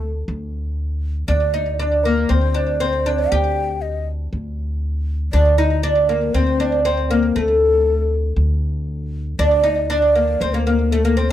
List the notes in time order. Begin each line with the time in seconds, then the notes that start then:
Already playing: D2
0.28 D2
1.28 D2 D4 D5
1.54 D#4
1.79 D4 D5
2.04 A#3 A#4
2.29 D2 C4 C5
2.54 D4
2.80 C4 C5
3.06 D4
3.30 D2 G4 G5
3.82 D#5
4.33 D2
5.33 D2 D4 D5
5.58 D#4 D#5
5.83 D4 D5
6.09 A#3 A#4
6.34 D2 C4 C5
6.60 D4
6.84 C4 C5
7.10 A#3 A#4
7.36 D2 A3 A4
8.36 D2
9.39 D2 D4 D5
9.63 D#4
9.90 D4 D5
10.15 A#3
10.41 D2 C4 C5
10.52 A#3 A#4
10.65 A#3 A#4
10.92 A3 A4
11.03 A#3 A#4
11.17 C4 C5